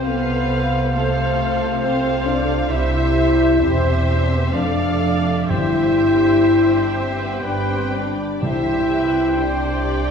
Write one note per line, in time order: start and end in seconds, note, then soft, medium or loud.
0.00 2.67 C5 soft
0.00 2.67 F5 medium
0.04 2.67 C2 soft
0.04 2.67 C3 soft
0.04 2.67 F3 soft
0.04 0.92 B3 medium
0.04 0.92 F4 soft
0.04 0.92 A4 soft
0.04 0.92 B4 medium
0.04 0.92 F5 soft
0.93 1.83 A3 medium
0.93 1.81 F4 soft
0.93 1.81 A4 soft
0.93 1.81 A4 medium
0.93 1.81 F5 soft
1.82 2.26 C4 medium
1.82 2.69 F4 soft
1.82 2.70 A4 soft
1.82 2.26 C5 medium
1.82 2.69 F5 soft
2.26 2.71 D4 medium
2.26 2.71 D5 medium
2.70 3.59 C2 soft
2.70 3.60 C3 soft
2.70 4.23 G3 soft
2.70 3.61 E4 medium
2.70 3.60 G4 soft
2.70 4.23 C5 medium
2.70 3.60 C5 soft
2.70 4.22 E5 medium
2.70 3.59 E5 soft
2.70 3.61 E5 medium
3.60 4.53 E1 soft
3.60 4.54 E2 medium
3.60 4.17 C4 medium
3.60 4.52 G4 soft
3.60 4.52 C5 soft
3.60 4.54 C5 medium
3.60 4.51 E5 soft
4.17 4.26 D4 soft
4.27 4.36 C4 medium
4.36 4.45 B3 medium
4.45 4.54 C4 soft
4.52 5.50 F1 soft
4.52 5.50 F2 soft
4.52 5.52 A3 soft
4.52 5.34 D4 medium
4.52 5.50 A4 soft
4.52 5.50 D5 soft
4.52 5.52 D5 soft
4.52 5.51 D5 medium
4.52 5.50 F5 soft
4.52 5.51 F5 soft
5.48 7.43 G1 soft
5.48 6.92 G2 soft
5.48 7.44 G2 soft
5.48 8.09 G3 soft
5.48 6.70 E4 medium
5.48 7.40 G4 soft
5.48 7.40 C5 soft
5.48 7.45 C5 soft
5.48 7.39 E5 soft
5.48 6.72 E5 medium
5.48 8.09 G5 soft
6.71 6.97 D4 medium
6.71 6.95 D5 soft
6.96 7.20 C4 soft
6.96 7.19 C5 soft
7.19 7.45 B3 soft
7.19 7.44 B4 soft
7.43 8.20 G1 soft
7.43 8.20 G2 soft
7.43 7.69 D4 medium
7.43 8.20 G4 soft
7.43 8.09 B4 soft
7.43 8.21 B4 soft
7.43 7.68 D5 soft
7.43 8.21 G5 soft
7.69 7.94 C4 soft
7.69 7.93 C5 soft
7.93 8.42 D4 medium
7.93 8.42 D5 soft
8.41 10.11 C2 soft
8.41 9.80 C3 medium
8.41 10.11 C3 soft
8.41 10.11 G3 soft
8.41 9.37 E4 medium
8.41 9.33 G4 soft
8.41 10.11 C5 soft
8.41 8.87 C5 soft
8.41 9.32 E5 soft
8.41 9.37 E5 medium
8.41 10.11 G5 soft
8.91 9.36 B4 soft
9.36 10.11 D4 medium
9.36 10.11 G4 soft
9.36 9.83 C5 soft
9.36 10.11 D5 medium
9.36 10.11 G5 soft
9.84 10.11 D5 soft